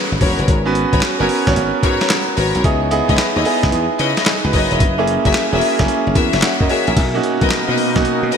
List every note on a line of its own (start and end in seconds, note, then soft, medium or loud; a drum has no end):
0.00 0.65 B3 medium
0.00 0.66 C#4 medium
0.00 0.66 F#4 medium
0.00 2.65 G#4 loud
0.00 1.21 A#4 medium
0.12 0.19 G#1 medium
0.20 0.36 E1 medium
0.20 0.43 F#4 medium
0.20 0.43 A#4 medium
0.20 0.43 B4 medium
0.20 0.43 C#5 medium
0.20 kick loud
0.20 open hi-hat medium
0.39 0.46 F#1 medium
0.39 closed hi-hat medium
0.48 0.84 G#1 medium
0.48 kick loud
0.48 closed hi-hat medium
0.65 1.05 B3 medium
0.65 1.05 C#4 medium
0.65 1.05 F#4 medium
0.65 1.05 B4 medium
0.75 closed hi-hat medium
0.92 1.00 G#1 medium
0.92 1.10 F#4 medium
0.92 1.10 A#4 medium
0.92 1.10 B4 medium
0.92 1.10 C#5 medium
0.92 kick medium
0.92 closed hi-hat medium
1.01 snare loud
1.01 clap medium
1.01 closed hi-hat medium
1.19 1.27 F#1 medium
1.19 1.39 B3 medium
1.19 1.40 C#4 medium
1.19 1.37 F#4 medium
1.19 1.40 F#4 medium
1.19 1.37 A#4 medium
1.19 1.40 A#4 loud
1.19 1.37 B4 medium
1.19 1.37 C#5 medium
1.29 open hi-hat medium
1.47 1.54 G#1 medium
1.47 2.31 B3 loud
1.47 2.31 C#4 medium
1.47 2.31 F#4 medium
1.47 2.31 C#5 loud
1.47 kick medium
1.47 snare medium
1.47 closed hi-hat medium
1.56 1.71 G#1 medium
1.56 closed hi-hat medium
1.83 1.97 G#2 loud
1.83 2.05 F#4 medium
1.83 2.05 A#4 medium
1.83 2.05 B4 medium
1.83 2.05 C#5 medium
1.83 kick medium
1.83 closed hi-hat medium
2.01 snare medium
2.01 closed hi-hat medium
2.10 snare loud
2.10 clap loud
2.10 closed hi-hat medium
2.37 2.52 G#1 medium
2.37 2.59 F#4 medium
2.37 2.59 A#4 medium
2.37 2.59 B4 medium
2.37 2.59 C#5 medium
2.37 open hi-hat medium
2.55 2.62 B1 medium
2.55 closed hi-hat medium
2.64 3.01 C#2 loud
2.64 2.87 B3 medium
2.64 2.88 D#4 medium
2.64 2.88 E4 medium
2.64 2.88 G#4 loud
2.64 kick loud
2.64 closed hi-hat medium
2.91 3.37 B3 medium
2.91 3.38 D#4 medium
2.91 3.38 E4 medium
2.91 3.38 G#4 loud
2.91 closed hi-hat medium
3.09 3.17 C#2 medium
3.09 3.26 E4 medium
3.09 3.26 B4 medium
3.09 3.26 C#5 medium
3.09 3.26 D#5 medium
3.09 kick medium
3.09 closed hi-hat medium
3.18 snare loud
3.18 clap medium
3.18 closed hi-hat medium
3.36 3.44 D#2 medium
3.36 3.53 E4 medium
3.36 3.53 B4 medium
3.36 3.53 C#5 medium
3.36 3.53 D#5 medium
3.45 4.32 B3 loud
3.45 4.26 D#4 medium
3.45 4.26 E4 medium
3.45 4.25 G#4 loud
3.45 open hi-hat medium
3.63 3.71 C#2 medium
3.63 kick medium
3.63 snare medium
3.63 closed hi-hat medium
3.72 3.87 E2 medium
3.72 closed hi-hat medium
3.99 4.14 C#3 loud
3.99 4.21 E4 medium
3.99 4.21 B4 medium
3.99 4.21 C#5 medium
3.99 4.21 D#5 medium
3.99 closed hi-hat medium
4.17 snare medium
4.17 closed hi-hat medium
4.26 4.44 D#4 medium
4.26 4.44 G#4 medium
4.26 snare loud
4.26 clap medium
4.26 closed hi-hat medium
4.44 4.52 C#2 medium
4.44 4.53 F#4 medium
4.44 4.53 B4 medium
4.53 4.68 F#1 medium
4.53 4.75 E4 medium
4.53 4.71 A#4 medium
4.53 4.75 B4 medium
4.53 4.75 C#5 medium
4.53 4.75 D#5 medium
4.53 4.71 D#5 medium
4.53 kick medium
4.53 open hi-hat medium
4.71 4.79 E1 medium
4.71 4.97 B4 medium
4.71 4.97 E5 medium
4.71 closed hi-hat medium
4.80 5.17 F#1 loud
4.80 kick loud
4.80 closed hi-hat medium
4.98 5.37 A#3 medium
4.98 5.37 C#4 medium
4.98 5.37 E4 medium
4.98 5.38 G#4 loud
5.07 closed hi-hat medium
5.25 5.33 F#1 medium
5.25 5.42 F#4 medium
5.25 5.42 G#4 medium
5.25 5.42 A#4 medium
5.25 5.42 E5 medium
5.25 kick medium
5.25 closed hi-hat medium
5.34 snare loud
5.34 clap medium
5.34 closed hi-hat medium
5.52 5.60 E1 medium
5.52 5.72 A#3 medium
5.52 5.72 C#4 medium
5.52 5.72 E4 medium
5.52 5.69 F#4 medium
5.52 5.69 G#4 medium
5.52 5.72 G#4 medium
5.52 5.69 A#4 medium
5.52 5.70 E5 medium
5.61 open hi-hat medium
5.79 5.87 F#1 medium
5.79 6.63 A#3 medium
5.79 6.63 C#4 medium
5.79 6.43 E4 medium
5.79 6.43 G#4 medium
5.79 kick medium
5.79 snare medium
5.79 closed hi-hat medium
5.88 closed hi-hat medium
6.07 6.14 F#1 medium
6.15 6.30 E2 medium
6.15 6.37 F#4 medium
6.15 6.37 G#4 medium
6.15 6.37 A#4 medium
6.15 6.38 E5 medium
6.15 kick medium
6.15 closed hi-hat medium
6.33 6.41 F#1 medium
6.33 snare medium
6.33 closed hi-hat medium
6.42 6.60 C#5 medium
6.42 6.60 F#5 medium
6.42 snare loud
6.42 clap medium
6.42 closed hi-hat medium
6.61 6.68 F#2 medium
6.61 6.70 A#4 medium
6.61 6.69 D#5 medium
6.61 kick medium
6.69 6.91 F#4 medium
6.69 6.91 G#4 medium
6.69 6.87 G#4 medium
6.69 6.92 A#4 medium
6.69 6.87 C#5 medium
6.69 6.92 E5 medium
6.69 open hi-hat medium
6.87 6.95 A#1 medium
6.87 7.14 E4 medium
6.87 7.13 A#4 medium
6.87 closed hi-hat soft
6.97 7.19 B1 loud
6.97 8.37 B2 medium
6.97 8.37 A#3 medium
6.97 8.37 D#4 medium
6.97 kick loud
6.97 closed hi-hat medium
6.97 crash medium
7.14 7.75 A#3 medium
7.14 7.75 C#4 medium
7.14 7.75 D#4 medium
7.14 7.76 F#4 medium
7.23 closed hi-hat medium
7.41 7.49 B1 medium
7.41 7.58 F#4 medium
7.41 7.58 A#4 medium
7.41 7.59 B4 medium
7.41 7.59 D#5 medium
7.41 kick medium
7.41 closed hi-hat medium
7.50 snare loud
7.50 clap medium
7.50 closed hi-hat medium
7.68 7.76 B2 medium
7.68 7.85 F#4 medium
7.68 7.85 A#4 medium
7.68 7.86 B4 medium
7.68 7.86 D#5 medium
7.78 open hi-hat medium
7.95 8.03 B1 medium
7.95 8.37 A#3 medium
7.95 8.37 C#4 medium
7.95 8.37 D#4 medium
7.95 8.37 F#4 loud
7.95 kick medium
7.95 snare medium
7.95 closed hi-hat medium
8.05 muted slap bass stroke soft
8.05 closed hi-hat medium
8.23 8.30 B2 loud
8.32 8.37 F#4 medium
8.32 8.37 A#4 medium
8.32 8.37 B4 medium
8.32 8.37 D#5 medium
8.32 closed hi-hat medium